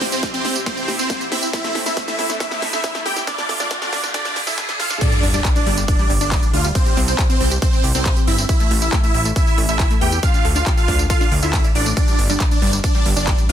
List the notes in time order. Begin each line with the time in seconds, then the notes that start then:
Already playing: C3 C4 E4 G4, riser
0.01 C4, snare, open hi-hat
0.12 C4 C5, closed hi-hat, tambourine
0.23 G4, kick, snare, closed hi-hat, tambourine
0.34 C4 C5, closed hi-hat, tambourine
0.45 C4, snare, open hi-hat
0.56 G4, closed hi-hat, tambourine
0.66 C4 C5, kick, snare, closed hi-hat, tambourine
0.77 C4, tambourine
0.88 G4, snare, open hi-hat
0.99 C4 C5, closed hi-hat, tambourine
1.10 C4, kick, snare, closed hi-hat, tambourine
1.21 G4, closed hi-hat, tambourine
1.32 C4 E4 E5, snare, open hi-hat
1.43 C4, closed hi-hat, tambourine
1.53 A2 A3 E4 E5, kick, snare, closed hi-hat, tambourine
1.64 A3, snare, closed hi-hat, tambourine
1.75 A3, snare, open hi-hat
1.86 E4 E5, snare, tambourine
1.97 A3, kick, snare, closed hi-hat, tambourine
2.08 A3 E4 E5, snare, closed hi-hat, tambourine
2.19 E4, snare, open hi-hat
2.30 A3, snare, closed hi-hat, tambourine
2.40 A3 E4 E5, kick, snare, closed hi-hat, tambourine
2.51 E4, snare, tambourine
2.62 A3, snare, open hi-hat
2.73 A3 E4 E5, snare, tambourine
2.84 E4, kick, snare, closed hi-hat, tambourine
2.95 A3, snare, closed hi-hat, tambourine
3.06 A3 G4 G5, snare, open hi-hat
3.17 E4, snare, closed hi-hat, tambourine
3.27 D2 D3 D4 F4 D5, kick, snare, closed hi-hat, tambourine
3.38 D4, snare, closed hi-hat, tambourine
3.49 A4, snare, open hi-hat
3.60 D4 D5, snare, closed hi-hat, tambourine
3.71 D4, kick, snare, closed hi-hat, tambourine
3.81 D4 A4 D5, snare, closed hi-hat, tambourine
3.93 D4, kick, snare, open hi-hat
4.03 D4, snare, tambourine
4.14 D4 A4 D5, kick, snare, closed hi-hat, tambourine
4.25 D4, snare, closed hi-hat, tambourine
4.36 D4, snare, open hi-hat
4.47 E4 A4 E5, snare, open hi-hat, tambourine
4.58 D4, kick, snare, closed hi-hat, tambourine
4.69 D4, snare, closed hi-hat, tambourine
4.79 F4 A4 F5, snare, open hi-hat
4.90 D4, snare, tambourine
5.01 G3 D4 D5, kick, closed hi-hat, crash, tambourine, sub drop
5.12 G3, closed hi-hat, tambourine
5.23 G1 D4, open hi-hat
5.34 G3 D4 D5, closed hi-hat, tambourine
5.45 G3, kick, clap, closed hi-hat, tambourine
5.56 D4 D5, closed hi-hat, tambourine
5.66 G1 G3, open hi-hat
5.77 G3, closed hi-hat, tambourine
5.88 D4 D5, kick, closed hi-hat, tambourine
5.99 G3, tambourine
6.10 G1 G3, open hi-hat
6.21 G1 D4 D5, closed hi-hat, tambourine
6.32 G3, kick, clap, closed hi-hat, tambourine
6.43 G3, closed hi-hat, tambourine
6.53 D2 D4 F4 F5, open hi-hat
6.64 G3, closed hi-hat, tambourine
6.75 C4 C5, kick, closed hi-hat, tambourine
6.86 G4, closed hi-hat, tambourine
6.97 C2 C4, open hi-hat
7.08 C4 C5, closed hi-hat, tambourine
7.19 G4, kick, clap, closed hi-hat, tambourine
7.30 C4 C5, closed hi-hat, tambourine
7.40 C2 C4, open hi-hat
7.51 G4, closed hi-hat, tambourine
7.62 C4 C5, kick, closed hi-hat, tambourine
7.73 C4, tambourine
7.84 C2 G4, open hi-hat
7.95 C2 C4 C5, closed hi-hat, tambourine
8.06 C4, kick, clap, closed hi-hat, tambourine
8.17 G4, closed hi-hat, tambourine
8.27 G1 C4 E4 E5, open hi-hat
8.38 C4, closed hi-hat, tambourine
8.49 E4 E5, kick, closed hi-hat, tambourine
8.60 A3, closed hi-hat, tambourine
8.71 A1 A3, open hi-hat
8.82 E4 E5, closed hi-hat, tambourine
8.93 A3, kick, clap, closed hi-hat, tambourine
9.03 A3 E4 E5, closed hi-hat, tambourine
9.14 A1 E4, open hi-hat
9.25 A3, closed hi-hat, tambourine
9.36 A3 E4 E5, kick, closed hi-hat, tambourine
9.47 E4, tambourine
9.58 A1 A3, open hi-hat
9.69 A1 A3 E4 E5, tambourine
9.80 E4, kick, clap, closed hi-hat, tambourine
9.91 A3, closed hi-hat, tambourine
10.01 E2 A3 G4 G5, open hi-hat
10.12 E4, closed hi-hat, tambourine
10.23 D4 F4 F5, kick, closed hi-hat, tambourine
10.34 D4, closed hi-hat, tambourine
10.45 D2 A4, open hi-hat
10.55 D4 F4 F5, closed hi-hat, tambourine
10.66 D4, kick, clap, closed hi-hat, tambourine
10.77 F4 A4 F5, closed hi-hat, tambourine
10.88 D2 D4, kick, open hi-hat
10.99 D4, closed hi-hat, tambourine
11.10 F4 A4 F5, kick, closed hi-hat, tambourine
11.21 D4, tambourine
11.32 D2 D5, open hi-hat
11.43 D2 E4 F4 E5, closed hi-hat, tambourine
11.53 A4, kick, clap, closed hi-hat, tambourine
11.64 D5, closed hi-hat, tambourine
11.75 A1 D4 D5, open hi-hat
11.86 A3, closed hi-hat, tambourine
11.97 G3 D4 D5, kick, closed hi-hat, tambourine
12.08 G3, closed hi-hat, tambourine
12.19 G1 D4, open hi-hat
12.30 G3 D4 D5, closed hi-hat, tambourine
12.40 kick, clap, closed hi-hat, tambourine
12.51 D4 D5, closed hi-hat, tambourine
12.62 G1 G3, open hi-hat
12.73 G3, closed hi-hat, tambourine
12.84 D4 D5, kick, closed hi-hat, tambourine
12.95 G3, tambourine
13.06 G1 G3, open hi-hat
13.16 G1 D4 D5, closed hi-hat, tambourine
13.27 G3, kick, clap, closed hi-hat, tambourine
13.38 G3, closed hi-hat, tambourine